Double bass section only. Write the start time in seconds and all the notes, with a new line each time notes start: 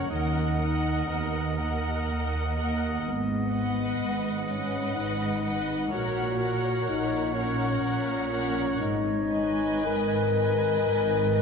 0.10 D#2
1.08 D#2
2.07 D#2
3.04 G#1
4.00 G#1
4.96 G#1
5.92 A#1
6.87 A#1
7.83 A#1
8.80 G#1
9.85 G#1
10.85 G#1